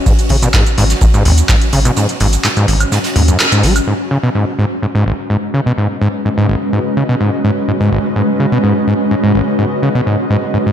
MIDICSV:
0, 0, Header, 1, 5, 480
1, 0, Start_track
1, 0, Key_signature, 5, "minor"
1, 0, Tempo, 476190
1, 65, Time_signature, 4, 2, 24, 8
1, 10808, End_track
2, 0, Start_track
2, 0, Title_t, "Ambient pad"
2, 0, Program_c, 0, 92
2, 0, Note_on_c, 0, 61, 100
2, 0, Note_on_c, 0, 66, 88
2, 0, Note_on_c, 0, 71, 82
2, 0, Note_on_c, 0, 75, 99
2, 3904, Note_off_c, 0, 61, 0
2, 3904, Note_off_c, 0, 66, 0
2, 3904, Note_off_c, 0, 71, 0
2, 3904, Note_off_c, 0, 75, 0
2, 3904, Note_on_c, 0, 56, 92
2, 4052, Note_on_c, 0, 61, 92
2, 4150, Note_on_c, 0, 75, 85
2, 4162, Note_on_c, 0, 66, 76
2, 4261, Note_on_c, 0, 71, 90
2, 10808, Note_off_c, 0, 56, 0
2, 10808, Note_off_c, 0, 61, 0
2, 10808, Note_off_c, 0, 66, 0
2, 10808, Note_off_c, 0, 71, 0
2, 10808, Note_off_c, 0, 75, 0
2, 10808, End_track
3, 0, Start_track
3, 0, Title_t, "Acid bass"
3, 0, Program_c, 1, 38
3, 63, Note_on_c, 1, 44, 83
3, 132, Note_off_c, 1, 44, 0
3, 304, Note_on_c, 1, 49, 76
3, 373, Note_off_c, 1, 49, 0
3, 428, Note_on_c, 1, 47, 103
3, 492, Note_off_c, 1, 47, 0
3, 543, Note_on_c, 1, 44, 84
3, 646, Note_off_c, 1, 44, 0
3, 784, Note_on_c, 1, 44, 105
3, 852, Note_off_c, 1, 44, 0
3, 1023, Note_on_c, 1, 44, 83
3, 1065, Note_off_c, 1, 44, 0
3, 1148, Note_on_c, 1, 44, 98
3, 1244, Note_off_c, 1, 44, 0
3, 1263, Note_on_c, 1, 32, 99
3, 1332, Note_off_c, 1, 32, 0
3, 1503, Note_on_c, 1, 44, 83
3, 1572, Note_off_c, 1, 44, 0
3, 1743, Note_on_c, 1, 49, 77
3, 1812, Note_off_c, 1, 49, 0
3, 1867, Note_on_c, 1, 47, 101
3, 1932, Note_off_c, 1, 47, 0
3, 1984, Note_on_c, 1, 44, 84
3, 2087, Note_off_c, 1, 44, 0
3, 2224, Note_on_c, 1, 44, 98
3, 2293, Note_off_c, 1, 44, 0
3, 2464, Note_on_c, 1, 44, 82
3, 2505, Note_off_c, 1, 44, 0
3, 2588, Note_on_c, 1, 44, 106
3, 2684, Note_off_c, 1, 44, 0
3, 2703, Note_on_c, 1, 32, 105
3, 2772, Note_off_c, 1, 32, 0
3, 2943, Note_on_c, 1, 44, 82
3, 3012, Note_off_c, 1, 44, 0
3, 3182, Note_on_c, 1, 44, 74
3, 3252, Note_off_c, 1, 44, 0
3, 3308, Note_on_c, 1, 42, 76
3, 3404, Note_off_c, 1, 42, 0
3, 3548, Note_on_c, 1, 44, 98
3, 3663, Note_on_c, 1, 56, 75
3, 3679, Note_off_c, 1, 44, 0
3, 3766, Note_off_c, 1, 56, 0
3, 3903, Note_on_c, 1, 44, 79
3, 3972, Note_off_c, 1, 44, 0
3, 4143, Note_on_c, 1, 49, 71
3, 4212, Note_off_c, 1, 49, 0
3, 4267, Note_on_c, 1, 47, 98
3, 4331, Note_off_c, 1, 47, 0
3, 4384, Note_on_c, 1, 44, 79
3, 4487, Note_off_c, 1, 44, 0
3, 4623, Note_on_c, 1, 44, 97
3, 4692, Note_off_c, 1, 44, 0
3, 4863, Note_on_c, 1, 44, 76
3, 4905, Note_off_c, 1, 44, 0
3, 4988, Note_on_c, 1, 44, 96
3, 5084, Note_off_c, 1, 44, 0
3, 5103, Note_on_c, 1, 32, 93
3, 5172, Note_off_c, 1, 32, 0
3, 5343, Note_on_c, 1, 44, 78
3, 5412, Note_off_c, 1, 44, 0
3, 5583, Note_on_c, 1, 49, 73
3, 5652, Note_off_c, 1, 49, 0
3, 5708, Note_on_c, 1, 47, 95
3, 5772, Note_off_c, 1, 47, 0
3, 5823, Note_on_c, 1, 44, 79
3, 5926, Note_off_c, 1, 44, 0
3, 6063, Note_on_c, 1, 44, 97
3, 6132, Note_off_c, 1, 44, 0
3, 6303, Note_on_c, 1, 44, 77
3, 6345, Note_off_c, 1, 44, 0
3, 6428, Note_on_c, 1, 44, 100
3, 6524, Note_off_c, 1, 44, 0
3, 6543, Note_on_c, 1, 32, 97
3, 6612, Note_off_c, 1, 32, 0
3, 6783, Note_on_c, 1, 44, 79
3, 6852, Note_off_c, 1, 44, 0
3, 7024, Note_on_c, 1, 49, 72
3, 7092, Note_off_c, 1, 49, 0
3, 7148, Note_on_c, 1, 47, 93
3, 7212, Note_off_c, 1, 47, 0
3, 7263, Note_on_c, 1, 44, 78
3, 7366, Note_off_c, 1, 44, 0
3, 7504, Note_on_c, 1, 44, 95
3, 7573, Note_off_c, 1, 44, 0
3, 7744, Note_on_c, 1, 44, 79
3, 7785, Note_off_c, 1, 44, 0
3, 7869, Note_on_c, 1, 44, 96
3, 7964, Note_off_c, 1, 44, 0
3, 7984, Note_on_c, 1, 32, 96
3, 8053, Note_off_c, 1, 32, 0
3, 8225, Note_on_c, 1, 44, 78
3, 8293, Note_off_c, 1, 44, 0
3, 8464, Note_on_c, 1, 49, 73
3, 8533, Note_off_c, 1, 49, 0
3, 8589, Note_on_c, 1, 47, 99
3, 8653, Note_off_c, 1, 47, 0
3, 8705, Note_on_c, 1, 44, 77
3, 8808, Note_off_c, 1, 44, 0
3, 8945, Note_on_c, 1, 44, 94
3, 9013, Note_off_c, 1, 44, 0
3, 9185, Note_on_c, 1, 44, 77
3, 9226, Note_off_c, 1, 44, 0
3, 9309, Note_on_c, 1, 44, 94
3, 9404, Note_off_c, 1, 44, 0
3, 9425, Note_on_c, 1, 32, 98
3, 9493, Note_off_c, 1, 32, 0
3, 9664, Note_on_c, 1, 44, 80
3, 9733, Note_off_c, 1, 44, 0
3, 9904, Note_on_c, 1, 49, 71
3, 9973, Note_off_c, 1, 49, 0
3, 10029, Note_on_c, 1, 47, 98
3, 10093, Note_off_c, 1, 47, 0
3, 10145, Note_on_c, 1, 44, 78
3, 10247, Note_off_c, 1, 44, 0
3, 10385, Note_on_c, 1, 44, 99
3, 10453, Note_off_c, 1, 44, 0
3, 10625, Note_on_c, 1, 44, 80
3, 10665, Note_off_c, 1, 44, 0
3, 10749, Note_on_c, 1, 44, 94
3, 10808, Note_off_c, 1, 44, 0
3, 10808, End_track
4, 0, Start_track
4, 0, Title_t, "Sub bass"
4, 0, Program_c, 2, 38
4, 304, Note_on_c, 2, 32, 104
4, 471, Note_off_c, 2, 32, 0
4, 783, Note_on_c, 2, 32, 88
4, 951, Note_off_c, 2, 32, 0
4, 1263, Note_on_c, 2, 39, 94
4, 1431, Note_off_c, 2, 39, 0
4, 1744, Note_on_c, 2, 32, 91
4, 1911, Note_off_c, 2, 32, 0
4, 2223, Note_on_c, 2, 32, 102
4, 2391, Note_off_c, 2, 32, 0
4, 2704, Note_on_c, 2, 32, 86
4, 2871, Note_off_c, 2, 32, 0
4, 3184, Note_on_c, 2, 39, 93
4, 3352, Note_off_c, 2, 39, 0
4, 3664, Note_on_c, 2, 32, 84
4, 3831, Note_off_c, 2, 32, 0
4, 10808, End_track
5, 0, Start_track
5, 0, Title_t, "Drums"
5, 64, Note_on_c, 9, 36, 108
5, 66, Note_on_c, 9, 82, 57
5, 69, Note_on_c, 9, 42, 87
5, 165, Note_off_c, 9, 36, 0
5, 166, Note_off_c, 9, 82, 0
5, 169, Note_off_c, 9, 42, 0
5, 189, Note_on_c, 9, 42, 52
5, 190, Note_on_c, 9, 82, 34
5, 198, Note_off_c, 9, 42, 0
5, 198, Note_on_c, 9, 42, 41
5, 291, Note_off_c, 9, 82, 0
5, 294, Note_off_c, 9, 42, 0
5, 294, Note_on_c, 9, 42, 69
5, 304, Note_on_c, 9, 36, 76
5, 304, Note_on_c, 9, 46, 99
5, 395, Note_off_c, 9, 42, 0
5, 405, Note_off_c, 9, 36, 0
5, 405, Note_off_c, 9, 46, 0
5, 428, Note_on_c, 9, 42, 63
5, 429, Note_on_c, 9, 82, 67
5, 529, Note_off_c, 9, 42, 0
5, 530, Note_off_c, 9, 82, 0
5, 540, Note_on_c, 9, 42, 93
5, 542, Note_on_c, 9, 39, 116
5, 544, Note_on_c, 9, 36, 110
5, 545, Note_on_c, 9, 82, 58
5, 546, Note_on_c, 9, 38, 114
5, 641, Note_off_c, 9, 42, 0
5, 643, Note_off_c, 9, 39, 0
5, 645, Note_off_c, 9, 36, 0
5, 646, Note_off_c, 9, 38, 0
5, 646, Note_off_c, 9, 82, 0
5, 668, Note_on_c, 9, 42, 37
5, 669, Note_on_c, 9, 82, 34
5, 769, Note_off_c, 9, 42, 0
5, 770, Note_off_c, 9, 82, 0
5, 783, Note_on_c, 9, 46, 96
5, 789, Note_on_c, 9, 42, 64
5, 884, Note_off_c, 9, 46, 0
5, 890, Note_off_c, 9, 42, 0
5, 908, Note_on_c, 9, 38, 53
5, 908, Note_on_c, 9, 42, 64
5, 909, Note_on_c, 9, 82, 69
5, 1008, Note_off_c, 9, 42, 0
5, 1009, Note_off_c, 9, 38, 0
5, 1009, Note_off_c, 9, 82, 0
5, 1020, Note_on_c, 9, 42, 83
5, 1024, Note_on_c, 9, 36, 116
5, 1024, Note_on_c, 9, 82, 58
5, 1120, Note_off_c, 9, 42, 0
5, 1124, Note_off_c, 9, 36, 0
5, 1125, Note_off_c, 9, 82, 0
5, 1149, Note_on_c, 9, 82, 35
5, 1250, Note_off_c, 9, 82, 0
5, 1264, Note_on_c, 9, 42, 62
5, 1264, Note_on_c, 9, 46, 100
5, 1365, Note_off_c, 9, 42, 0
5, 1365, Note_off_c, 9, 46, 0
5, 1388, Note_on_c, 9, 42, 66
5, 1389, Note_on_c, 9, 82, 69
5, 1489, Note_off_c, 9, 42, 0
5, 1489, Note_off_c, 9, 82, 0
5, 1501, Note_on_c, 9, 39, 117
5, 1504, Note_on_c, 9, 36, 114
5, 1504, Note_on_c, 9, 82, 59
5, 1505, Note_on_c, 9, 46, 80
5, 1506, Note_on_c, 9, 38, 112
5, 1602, Note_off_c, 9, 39, 0
5, 1605, Note_off_c, 9, 36, 0
5, 1605, Note_off_c, 9, 46, 0
5, 1605, Note_off_c, 9, 82, 0
5, 1607, Note_off_c, 9, 38, 0
5, 1627, Note_on_c, 9, 42, 53
5, 1628, Note_on_c, 9, 82, 34
5, 1728, Note_off_c, 9, 42, 0
5, 1729, Note_off_c, 9, 82, 0
5, 1740, Note_on_c, 9, 42, 68
5, 1743, Note_on_c, 9, 46, 99
5, 1841, Note_off_c, 9, 42, 0
5, 1844, Note_off_c, 9, 46, 0
5, 1868, Note_on_c, 9, 42, 46
5, 1869, Note_on_c, 9, 82, 70
5, 1969, Note_off_c, 9, 42, 0
5, 1970, Note_off_c, 9, 82, 0
5, 1984, Note_on_c, 9, 82, 58
5, 1985, Note_on_c, 9, 42, 78
5, 2085, Note_off_c, 9, 42, 0
5, 2085, Note_off_c, 9, 82, 0
5, 2107, Note_on_c, 9, 42, 54
5, 2108, Note_on_c, 9, 82, 35
5, 2208, Note_off_c, 9, 42, 0
5, 2209, Note_off_c, 9, 82, 0
5, 2219, Note_on_c, 9, 42, 61
5, 2223, Note_on_c, 9, 46, 101
5, 2319, Note_off_c, 9, 42, 0
5, 2323, Note_off_c, 9, 46, 0
5, 2344, Note_on_c, 9, 42, 41
5, 2347, Note_off_c, 9, 42, 0
5, 2347, Note_on_c, 9, 42, 65
5, 2348, Note_on_c, 9, 82, 67
5, 2448, Note_off_c, 9, 42, 0
5, 2449, Note_off_c, 9, 82, 0
5, 2461, Note_on_c, 9, 39, 122
5, 2464, Note_on_c, 9, 82, 58
5, 2466, Note_on_c, 9, 38, 118
5, 2466, Note_on_c, 9, 42, 83
5, 2562, Note_off_c, 9, 39, 0
5, 2565, Note_off_c, 9, 82, 0
5, 2567, Note_off_c, 9, 38, 0
5, 2567, Note_off_c, 9, 42, 0
5, 2587, Note_on_c, 9, 42, 37
5, 2588, Note_on_c, 9, 82, 34
5, 2688, Note_off_c, 9, 42, 0
5, 2689, Note_off_c, 9, 82, 0
5, 2702, Note_on_c, 9, 42, 74
5, 2703, Note_on_c, 9, 46, 99
5, 2802, Note_off_c, 9, 42, 0
5, 2804, Note_off_c, 9, 46, 0
5, 2827, Note_on_c, 9, 42, 68
5, 2827, Note_on_c, 9, 76, 58
5, 2828, Note_on_c, 9, 82, 68
5, 2928, Note_off_c, 9, 42, 0
5, 2928, Note_off_c, 9, 76, 0
5, 2929, Note_off_c, 9, 82, 0
5, 2945, Note_on_c, 9, 38, 95
5, 2945, Note_on_c, 9, 82, 58
5, 2951, Note_on_c, 9, 42, 73
5, 3045, Note_off_c, 9, 38, 0
5, 3045, Note_off_c, 9, 82, 0
5, 3052, Note_off_c, 9, 42, 0
5, 3065, Note_on_c, 9, 42, 84
5, 3069, Note_off_c, 9, 42, 0
5, 3069, Note_on_c, 9, 42, 38
5, 3070, Note_on_c, 9, 82, 35
5, 3073, Note_on_c, 9, 38, 97
5, 3169, Note_off_c, 9, 42, 0
5, 3170, Note_off_c, 9, 82, 0
5, 3173, Note_off_c, 9, 38, 0
5, 3183, Note_on_c, 9, 46, 104
5, 3188, Note_on_c, 9, 42, 70
5, 3284, Note_off_c, 9, 46, 0
5, 3289, Note_off_c, 9, 42, 0
5, 3308, Note_on_c, 9, 42, 71
5, 3309, Note_on_c, 9, 82, 68
5, 3409, Note_off_c, 9, 42, 0
5, 3410, Note_off_c, 9, 82, 0
5, 3422, Note_on_c, 9, 42, 96
5, 3423, Note_on_c, 9, 38, 116
5, 3423, Note_on_c, 9, 39, 121
5, 3425, Note_on_c, 9, 82, 59
5, 3523, Note_off_c, 9, 39, 0
5, 3523, Note_off_c, 9, 42, 0
5, 3524, Note_off_c, 9, 38, 0
5, 3526, Note_off_c, 9, 82, 0
5, 3549, Note_on_c, 9, 42, 53
5, 3550, Note_on_c, 9, 82, 34
5, 3649, Note_off_c, 9, 42, 0
5, 3650, Note_off_c, 9, 82, 0
5, 3660, Note_on_c, 9, 38, 47
5, 3663, Note_on_c, 9, 46, 99
5, 3669, Note_on_c, 9, 42, 70
5, 3761, Note_off_c, 9, 38, 0
5, 3764, Note_off_c, 9, 46, 0
5, 3770, Note_off_c, 9, 42, 0
5, 3788, Note_on_c, 9, 42, 67
5, 3788, Note_on_c, 9, 76, 57
5, 3789, Note_on_c, 9, 82, 68
5, 3889, Note_off_c, 9, 42, 0
5, 3889, Note_off_c, 9, 76, 0
5, 3890, Note_off_c, 9, 82, 0
5, 10808, End_track
0, 0, End_of_file